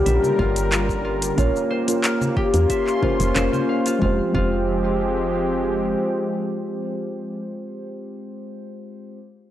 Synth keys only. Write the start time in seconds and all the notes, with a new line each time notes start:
Already playing: A#3 C#4 F4 G4 C#5
1.37 A#3 C#4 F4 A#4 C#5
1.86 A#3 C#4 F4 A#4
3.02 A#3 C#4 F4 A#4 C5
3.35 A#3 C#4 F4 A#4
3.99 G#3 C4 F4
4.03 G4 C5
4.32 G#3 C4 F4
4.36 G4 C5